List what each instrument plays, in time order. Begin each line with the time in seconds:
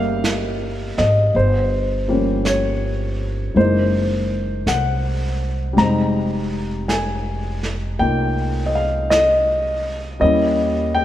Already playing: upright bass G1, grand piano D#3 G3 A#3 C4 D#5 E5 F5 G5
0.24 brush sweep, snare, hi-hat pedal
0.98 upright bass G#1, grand piano D#5, snare
1.35 upright bass G1, grand piano C5, brush sweep
2.08 grand piano F3 G3 A#3 C#4
2.45 grand piano C#5, brush sweep, snare, hi-hat pedal
3.54 upright bass F#1, grand piano E3 G#3 A#3 C5, brush sweep
3.59 grand piano D#4
4.66 upright bass C2, grand piano F#5, brush sweep, snare, hi-hat pedal
5.73 upright bass F1, grand piano G3 G#3
5.78 grand piano C4 A#5, brush sweep, snare
5.83 grand piano D#4
6.88 grand piano G#5, brush sweep, snare, hi-hat pedal
7.63 snare
7.99 upright bass C2, grand piano A#3 D#4 F4 G5, brush sweep
8.66 grand piano D#5
8.75 grand piano F5
9.10 grand piano D#5, brush sweep, snare, hi-hat pedal
10.20 upright bass D#2, grand piano G3 A#3 C#4 D#5, brush sweep
10.24 grand piano E4
10.95 grand piano G5